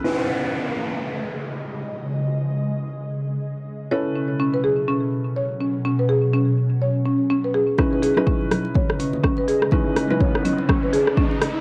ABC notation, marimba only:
X:1
M:4/4
L:1/16
Q:"Swing 16ths" 1/4=124
K:C#m
V:1 name="Marimba"
z16 | z16 | c z C z C B G z C z3 c z C z | C B G z C z3 c z C z C B G z |
C B G z C z3 c z C z C B G z | C z3 c z C z C B G z C z3 |]